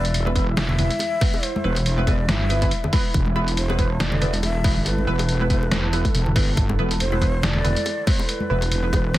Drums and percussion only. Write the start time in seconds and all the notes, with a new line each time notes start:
0.05 closed hi-hat
0.14 closed hi-hat
0.26 high bongo, high conga
0.36 kick, closed hi-hat
0.57 snare, closed hi-hat, high bongo, high conga
0.69 low conga
0.79 closed hi-hat, low conga
0.90 closed hi-hat, high conga
0.99 closed hi-hat, high bongo
1.21 kick, open hi-hat, high conga
1.34 high bongo
1.43 closed hi-hat
1.56 high conga
1.76 closed hi-hat, high bongo
1.86 closed hi-hat
1.98 high conga
2.07 kick, closed hi-hat, high bongo
2.29 snare, closed hi-hat, high conga
2.50 closed hi-hat, high bongo
2.62 kick, closed hi-hat, high conga
2.71 closed hi-hat
2.84 high bongo, low conga
2.93 kick, open hi-hat, high conga
3.14 kick, closed hi-hat
3.26 high conga
3.36 high bongo
3.48 closed hi-hat
3.57 closed hi-hat
3.70 high bongo, high conga
3.79 kick, closed hi-hat
4.00 snare, closed hi-hat, high conga
4.12 high bongo, low conga
4.21 closed hi-hat, low conga
4.33 closed hi-hat, high conga
4.43 closed hi-hat, high bongo
4.64 kick, open hi-hat, high conga
4.86 closed hi-hat, high bongo
4.98 high conga
5.19 closed hi-hat, high bongo
5.29 closed hi-hat
5.40 high conga
5.50 kick, closed hi-hat
5.63 high bongo
5.71 snare, closed hi-hat, high conga
5.93 closed hi-hat, high bongo
6.05 kick, closed hi-hat, high conga
6.15 closed hi-hat
6.26 low conga
6.36 kick, open hi-hat, high bongo, high conga
6.57 kick, closed hi-hat
6.69 high bongo, high conga
6.91 closed hi-hat
7.00 closed hi-hat
7.12 high bongo, high conga
7.22 kick, closed hi-hat
7.43 snare, closed hi-hat, high bongo, high conga
7.54 low conga
7.65 closed hi-hat, low conga
7.76 closed hi-hat, high conga
7.86 closed hi-hat, high bongo
8.07 kick, open hi-hat, high conga
8.19 high bongo
8.29 closed hi-hat
8.40 high conga
8.62 closed hi-hat, high bongo
8.72 closed hi-hat
8.83 high conga
8.93 kick, closed hi-hat, high bongo
9.14 snare, closed hi-hat, high conga